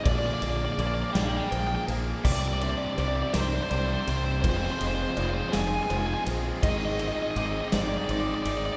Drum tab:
CC |------|x-----|------|------|
RD |xxxxxx|-xxxxx|xxxxxx|xxxxxx|
SD |---o--|---o--|---o--|---o--|
BD |o-----|o-----|o-----|o-----|